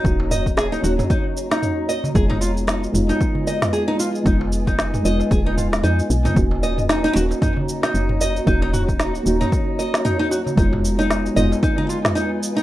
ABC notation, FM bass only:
X:1
M:4/4
L:1/8
Q:"Swing 16ths" 1/4=114
K:Ebm
V:1 name="FM bass" clef=bass
E,,,3 E,,, z4 | F,,,3 F,,, z4 | F,,,3 F,,, E,,,2 F,, C,, | E,,,3 E,,, z2 G,,,2 |
E,,,3 E,,, z4 | F,,,3 F,,, z4 |]